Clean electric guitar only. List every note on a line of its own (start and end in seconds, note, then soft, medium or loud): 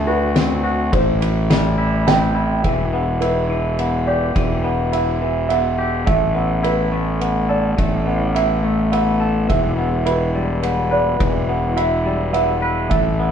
0.00 0.64 D3 medium
0.00 0.93 A3 medium
0.07 0.62 F#4 medium
0.35 0.93 C4 medium
0.64 0.93 F#4 medium
0.92 2.35 A2 medium
1.21 2.63 E3 medium
1.50 2.64 G3 medium
1.78 2.34 E4 medium
2.07 2.64 C4 medium
2.35 2.64 E4 medium
2.64 3.49 E3 soft
2.94 3.78 B3 soft
3.22 4.92 E4 medium
3.49 4.35 E3 soft
3.79 4.63 B3 soft
4.08 5.50 G4 medium
4.35 5.21 E3 medium
4.63 5.50 B3 soft
4.92 6.63 E4 medium
5.22 6.06 E3 medium
5.50 6.09 B3 soft
5.78 6.07 G4 medium
6.06 6.90 A3 soft
6.34 7.20 B3 soft
6.63 8.34 E4 medium
6.92 7.76 A3 soft
7.21 8.05 B3 soft
7.49 8.92 A4 medium
7.77 8.62 A3 soft
8.06 8.92 B3 soft
8.34 10.05 E4 medium
8.63 9.49 A3 soft
8.92 9.77 B3 medium
9.20 9.49 A4 medium
9.48 11.19 E3 medium
9.77 10.63 B3 soft
10.06 11.76 E4 medium
10.35 11.77 G3 medium
10.63 11.48 B3 soft
10.91 12.62 B4 medium
11.19 13.31 E3 medium
11.49 12.33 B3 medium
11.77 13.31 E4 medium
12.06 12.91 G3 medium
12.33 12.95 B3 medium
12.62 12.95 B4 medium
12.92 13.31 A3 medium
13.19 13.31 B3 medium